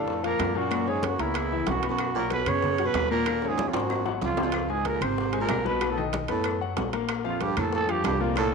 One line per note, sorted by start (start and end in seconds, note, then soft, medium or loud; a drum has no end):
0.00 0.36 F2 medium
0.00 0.23 A2 medium
0.00 0.18 D4 medium
0.00 0.24 A4 medium
0.00 0.18 D5 medium
0.00 0.18 F5 medium
0.08 high bongo medium
0.08 high conga soft
0.23 0.58 A#2 medium
0.23 0.49 F3 medium
0.23 0.50 F4 medium
0.23 0.58 A#4 loud
0.23 0.50 F5 medium
0.23 high bongo soft
0.23 high conga soft
0.23 high timbale medium
0.39 1.14 F#2 medium
0.39 high bongo medium
0.39 low bongo medium
0.39 high conga medium
0.39 high timbale medium
0.39 low timbale medium
0.39 claves medium
0.55 0.91 F#2 medium
0.55 0.68 A#2 medium
0.55 0.69 A#3 medium
0.55 0.90 F#4 medium
0.55 0.69 A#4 medium
0.55 high bongo soft
0.71 0.84 A#2 medium
0.71 0.84 A#3 medium
0.71 0.84 A#4 medium
0.71 high bongo medium
0.71 high conga soft
0.71 high timbale medium
0.71 claves medium
0.87 1.06 G#2 medium
0.87 1.13 C#3 medium
0.87 1.14 C#4 medium
0.87 1.07 G#4 medium
0.87 1.14 C#5 medium
0.87 high bongo soft
0.87 high conga soft
1.03 1.22 F#2 medium
1.03 1.22 F#4 medium
1.03 high bongo medium
1.03 high conga medium
1.03 high timbale medium
1.03 low timbale medium
1.18 1.64 C#2 medium
1.18 1.69 E2 medium
1.18 1.45 A#3 medium
1.18 1.70 E4 loud
1.18 1.45 A#4 medium
1.18 1.46 A#5 medium
1.18 high bongo soft
1.18 high conga soft
1.18 high timbale medium
1.34 high bongo medium
1.34 high conga soft
1.34 high timbale loud
1.34 claves medium
1.52 1.78 E3 medium
1.52 1.78 E4 medium
1.52 1.78 E5 medium
1.52 high conga soft
1.66 2.41 B1 medium
1.66 1.89 F#2 medium
1.66 1.89 F#4 loud
1.66 high bongo medium
1.66 low bongo medium
1.66 high conga medium
1.66 high timbale medium
1.66 low timbale medium
1.82 2.10 B3 medium
1.82 2.10 B4 medium
1.82 2.10 B5 medium
1.82 high bongo soft
1.82 high conga soft
1.82 high timbale medium
1.89 2.14 F#2 medium
1.89 2.14 F#4 medium
1.98 high bongo medium
1.98 high conga soft
1.98 high timbale medium
1.98 claves medium
2.15 2.30 A#2 medium
2.15 2.42 F#3 medium
2.15 2.42 F#4 medium
2.15 2.31 A#4 loud
2.15 2.42 F#5 medium
2.15 high bongo soft
2.15 high conga soft
2.30 2.48 B2 medium
2.30 2.50 B4 loud
2.30 high bongo medium
2.30 high conga medium
2.30 high timbale medium
2.30 low timbale medium
2.46 2.91 F#2 loud
2.46 2.86 C#3 loud
2.46 2.73 B3 medium
2.46 2.73 B4 medium
2.46 2.87 C#5 loud
2.46 2.73 B5 medium
2.46 high conga soft
2.46 low conga medium
2.46 high timbale medium
2.46 claves medium
2.63 high bongo medium
2.63 high conga soft
2.63 low conga medium
2.78 3.05 F#3 medium
2.78 3.05 F#4 medium
2.78 3.05 F#5 medium
2.78 high bongo soft
2.78 high conga soft
2.78 high timbale medium
2.85 3.11 B2 medium
2.85 3.10 B4 loud
2.94 3.68 D#2 medium
2.94 high bongo medium
2.94 low bongo medium
2.94 high conga medium
2.94 high timbale medium
2.94 low timbale medium
2.94 claves medium
3.10 3.24 A#2 medium
3.10 3.49 A#2 medium
3.10 3.24 A#3 medium
3.10 3.49 A#4 loud
3.10 3.24 A#4 medium
3.10 high bongo soft
3.26 3.39 A#2 medium
3.26 3.40 A#3 medium
3.26 3.40 A#4 medium
3.26 high bongo medium
3.26 high conga soft
3.26 high timbale medium
3.26 claves medium
3.42 3.69 C#3 medium
3.42 3.69 C#4 medium
3.42 3.70 C#5 medium
3.42 high bongo medium
3.42 high conga soft
3.48 3.69 G#2 medium
3.48 3.70 G#4 loud
3.58 low bongo medium
3.58 high conga loud
3.58 high timbale medium
3.67 3.76 F2 medium
3.67 3.77 F4 medium
3.73 4.18 G#1 medium
3.73 4.06 F#2 medium
3.73 4.00 C4 medium
3.73 4.07 F#4 medium
3.73 4.01 C5 medium
3.73 4.01 C6 medium
3.73 low bongo loud
3.73 high conga soft
3.73 high timbale loud
3.90 low bongo loud
3.90 high conga soft
3.90 claves medium
4.05 4.32 F#3 medium
4.05 4.32 F#4 medium
4.05 4.32 F#5 medium
4.05 low bongo loud
4.05 high conga soft
4.21 4.96 C#2 medium
4.21 4.43 F2 medium
4.21 4.43 F4 medium
4.21 low bongo medium
4.21 high conga medium
4.21 low timbale medium
4.37 4.64 C4 medium
4.37 4.64 C5 medium
4.37 4.65 C6 medium
4.37 low bongo loud
4.37 low timbale medium
4.43 4.72 F2 medium
4.43 4.72 F4 medium
4.52 high bongo medium
4.52 high conga soft
4.52 high timbale medium
4.52 claves medium
4.69 4.89 G#2 medium
4.69 4.96 G#3 medium
4.69 4.96 G#4 medium
4.69 4.88 G#4 medium
4.69 4.96 G#5 medium
4.69 high bongo soft
4.69 high conga soft
4.85 5.04 A#2 medium
4.85 5.04 A#4 medium
4.85 high bongo medium
4.85 high conga medium
4.85 high timbale medium
4.85 low timbale medium
5.01 5.46 G#1 medium
5.01 5.39 C3 medium
5.01 5.28 C4 medium
5.01 5.28 C5 medium
5.01 5.39 C5 medium
5.01 5.28 C6 medium
5.01 high conga soft
5.01 low conga medium
5.01 high timbale medium
5.01 claves medium
5.18 high bongo medium
5.18 high conga soft
5.32 5.59 G#3 medium
5.32 5.59 G#4 medium
5.32 5.59 G#5 medium
5.32 high bongo soft
5.32 high conga soft
5.32 high timbale medium
5.41 5.65 A#2 medium
5.41 5.65 A#4 loud
5.49 6.23 B1 medium
5.49 high bongo medium
5.49 low bongo medium
5.49 high conga medium
5.49 high timbale medium
5.49 low timbale medium
5.49 claves medium
5.65 5.78 B2 medium
5.65 5.91 B2 medium
5.65 5.78 B3 medium
5.65 5.79 B4 medium
5.65 5.91 B4 medium
5.65 high bongo soft
5.65 high conga medium
5.81 5.94 B2 medium
5.81 5.94 B3 medium
5.81 5.95 B4 medium
5.81 high bongo medium
5.81 high conga soft
5.81 high timbale medium
5.81 claves medium
5.89 6.04 A2 medium
5.89 6.04 A4 medium
5.97 6.23 D#3 medium
5.97 6.23 D#4 medium
5.97 6.24 D#5 medium
5.97 high bongo soft
5.97 high conga soft
6.13 high bongo soft
6.13 high conga loud
6.13 high timbale medium
6.13 low timbale medium
6.28 6.73 F#2 loud
6.28 6.59 A2 medium
6.28 6.55 B3 medium
6.28 6.60 A4 medium
6.28 6.55 B4 medium
6.28 6.56 B5 medium
6.28 high bongo soft
6.28 high conga soft
6.28 high timbale medium
6.44 high bongo medium
6.44 high conga soft
6.44 high timbale medium
6.44 claves medium
6.61 6.87 F#3 medium
6.61 6.87 F#4 medium
6.61 6.87 F#5 medium
6.61 high conga soft
6.77 7.51 A#1 medium
6.77 high bongo medium
6.77 low bongo medium
6.77 high conga medium
6.77 high timbale medium
6.77 low timbale medium
6.93 7.19 A#3 medium
6.93 7.19 A#4 medium
6.93 7.19 A#5 medium
6.93 high bongo soft
6.93 high conga soft
6.93 high timbale medium
7.09 high bongo medium
7.09 high conga soft
7.09 high timbale medium
7.09 claves medium
7.24 7.43 F2 medium
7.24 7.51 F3 medium
7.24 7.51 F4 medium
7.24 7.44 F4 medium
7.24 7.51 F5 medium
7.24 high bongo soft
7.24 high conga soft
7.41 7.57 G2 medium
7.41 7.57 G4 medium
7.41 high bongo soft
7.41 high conga medium
7.41 high timbale medium
7.41 low timbale medium
7.56 8.01 F2 medium
7.56 7.72 A2 medium
7.56 7.82 A#3 medium
7.56 7.72 A4 medium
7.56 7.83 A#4 medium
7.56 7.83 A#5 medium
7.56 high conga soft
7.56 low conga medium
7.56 high timbale medium
7.56 claves medium
7.73 7.89 A2 medium
7.73 7.92 A4 loud
7.73 high bongo medium
7.73 high conga soft
7.87 8.03 G2 medium
7.87 8.14 F3 medium
7.87 8.15 F4 medium
7.87 8.05 G4 loud
7.87 8.15 F5 medium
7.87 high bongo soft
7.87 high conga soft
7.87 high timbale medium
8.04 8.54 C2 medium
8.04 8.21 G2 medium
8.04 8.23 G4 loud
8.04 high bongo medium
8.04 low bongo medium
8.04 high conga medium
8.04 high timbale medium
8.04 low timbale medium
8.04 claves medium
8.19 8.36 F2 medium
8.19 8.33 A#2 medium
8.19 8.33 A#3 medium
8.19 8.37 F4 medium
8.19 8.34 A#4 medium
8.19 high bongo soft
8.36 8.51 A2 medium
8.36 8.49 A#2 medium
8.36 8.49 A#3 medium
8.36 8.52 A4 loud
8.36 8.49 A#4 medium
8.36 high bongo medium
8.36 high conga soft
8.36 high timbale medium
8.36 claves medium
8.51 8.54 D#3 medium